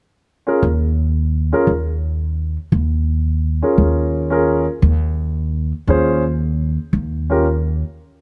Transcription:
0.47 grand piano C#4 F4 G#4 A#4
0.63 upright bass D#2
1.53 grand piano C#4 F4 G#4 A#4
1.67 upright bass D#2
2.72 upright bass D#2
3.62 grand piano C#4 F4 G#4 A#4
3.78 upright bass D#2
4.30 grand piano C#4 F4 G#4 A#4
4.82 upright bass D#2
5.87 upright bass D#2, grand piano C#4 F4 G#4 C5
6.93 upright bass D#2
7.30 grand piano C#4 F4 G4 A#4

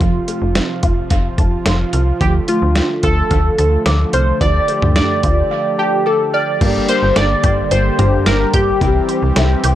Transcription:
Already playing: analog synth pad C3 F3 F4, analog polysynth F4
0.01 fm bass F1, synth arpeggio sound F3, kick, closed hi-hat
0.28 synth arpeggio sound A3, closed hi-hat
0.42 fm bass F1
0.55 synth arpeggio sound C4, snare, closed hi-hat
0.83 fm bass F1, synth arpeggio sound F4, kick, closed hi-hat
1.10 fm bass F1, synth arpeggio sound F5, kick, closed hi-hat
1.38 fm bass F1, synth arpeggio sound A5, kick, closed hi-hat
1.66 fm bass F1, synth arpeggio sound C6, snare, closed hi-hat
1.93 fm bass C2, synth arpeggio sound F6, closed hi-hat
2.21 fm bass D2, analog synth pad D3 A3, synth arpeggio sound F3, analog polysynth G4, kick, closed hi-hat
2.48 synth arpeggio sound A3, analog polysynth F4, closed hi-hat
2.62 fm bass D2
2.75 synth arpeggio sound D4, snare, closed hi-hat
3.03 fm bass D2, synth arpeggio sound F4, analog polysynth A4, kick, closed hi-hat
3.31 fm bass D2, synth arpeggio sound F5, kick, closed hi-hat
3.58 fm bass D2, synth arpeggio sound A5, closed hi-hat
3.86 fm bass D2, synth arpeggio sound D6, snare, closed hi-hat
4.13 fm bass C2, analog polysynth C5, synth arpeggio sound F6, closed hi-hat
4.41 fm bass D2, synth arpeggio sound F3, analog synth pad G4, analog polysynth D5, kick, closed hi-hat
4.68 synth arpeggio sound A3, closed hi-hat
4.82 fm bass D2, mid tom
4.96 synth arpeggio sound D4, analog polysynth D5, snare, closed hi-hat
5.23 fm bass D2, synth arpeggio sound F4, kick, closed hi-hat
5.51 synth arpeggio sound F5
5.79 analog polysynth G4, synth arpeggio sound A5
6.06 analog polysynth A4, synth arpeggio sound D6
6.34 analog polysynth D5, synth arpeggio sound F6
6.61 fm bass G1, analog synth pad D3 G3 G4, synth arpeggio sound G3, synth keys A#3 D4 G4, kick, closed hi-hat, crash
6.89 synth arpeggio sound A#3, analog polysynth C5, closed hi-hat
7.03 fm bass G1
7.16 fm bass G1, synth arpeggio sound D4, analog polysynth D5, snare, closed hi-hat
7.44 fm bass G1, synth arpeggio sound G4, kick, closed hi-hat
7.71 fm bass G1, analog polysynth C5, closed hi-hat
7.99 fm bass G1, synth keys A#3 D4 G4, synth arpeggio sound A#5, closed hi-hat, mid tom
8.26 fm bass G1, analog polysynth A#4, synth arpeggio sound D6, snare, closed hi-hat
8.54 fm bass G1, analog polysynth G4, synth arpeggio sound G6, kick, closed hi-hat
8.81 fm bass C2, analog synth pad E3 C4, synth arpeggio sound G3, synth keys C4 E4 G4, kick, closed hi-hat
9.09 synth arpeggio sound C4, closed hi-hat
9.22 fm bass C2
9.36 fm bass C2, synth arpeggio sound E4, snare, closed hi-hat
9.64 fm bass C2, synth arpeggio sound G4, closed hi-hat

